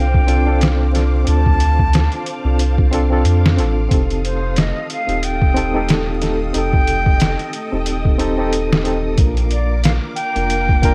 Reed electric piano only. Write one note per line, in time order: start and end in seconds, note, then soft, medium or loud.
0.00 3.92 D3 medium
0.00 0.27 C4 medium
0.00 0.28 D4 medium
0.00 0.29 F4 medium
0.00 0.29 A4 medium
0.27 0.42 C4 loud
0.27 0.42 D4 medium
0.27 0.43 F4 loud
0.27 0.43 A4 loud
0.45 0.90 C4 medium
0.45 0.90 D4 medium
0.45 0.91 F4 medium
0.45 0.91 A4 loud
0.93 1.23 C4 medium
0.93 1.23 D4 medium
0.93 1.24 F4 medium
0.93 1.24 A4 medium
1.25 2.39 C4 medium
1.25 2.40 D4 medium
1.25 2.41 F4 medium
1.30 2.42 A4 medium
2.44 2.55 C4 medium
2.44 2.55 D4 medium
2.44 2.56 F4 medium
2.44 2.56 A4 medium
2.91 3.06 C4 loud
2.91 3.07 D4 medium
2.91 3.07 F4 loud
2.91 3.07 A4 loud
3.10 3.54 C4 medium
3.10 3.54 D4 medium
3.10 3.55 F4 medium
3.10 3.55 A4 loud
3.57 3.87 C4 medium
3.57 3.87 D4 medium
3.57 3.88 F4 medium
3.57 3.88 A4 medium
3.89 5.03 C4 medium
3.89 5.04 D#4 medium
3.89 5.05 G4 medium
3.94 5.05 A4 medium
5.07 5.18 C4 medium
5.07 5.19 D#4 medium
5.07 5.19 G4 medium
5.07 5.20 A4 medium
5.54 5.69 C4 loud
5.54 5.70 D#4 medium
5.54 5.70 G4 loud
5.54 5.71 A4 loud
5.74 6.18 C4 medium
5.74 6.18 D#4 medium
5.74 6.19 G4 medium
5.74 6.19 A4 loud
6.21 6.51 C4 medium
6.21 6.51 D#4 medium
6.21 6.52 G4 medium
6.21 6.52 A4 medium
6.53 7.67 C4 medium
6.53 7.68 D#4 medium
6.53 7.69 G4 medium
6.58 7.69 A4 medium
7.72 7.82 C4 medium
7.72 7.83 D#4 medium
7.72 7.83 G4 medium
7.72 7.84 A4 loud
8.18 8.33 C4 loud
8.18 8.34 D#4 medium
8.18 8.34 G4 medium
8.18 8.34 A4 loud
8.38 8.82 C4 medium
8.38 8.82 D#4 medium
8.38 8.82 G4 medium
8.38 8.83 A4 loud
8.84 9.14 C4 medium
8.84 9.15 D#4 medium
8.84 9.15 G4 medium
8.84 9.16 A4 medium
9.15 10.30 A#3 medium
9.15 10.31 D4 medium
9.15 10.32 F4 medium
9.20 10.33 A#4 medium
10.36 10.46 A#3 medium
10.36 10.46 D4 medium
10.36 10.47 F4 medium
10.36 10.47 A#4 medium
10.82 10.95 A#3 loud
10.82 10.95 D4 medium
10.82 10.95 F4 loud
10.82 10.95 A#4 loud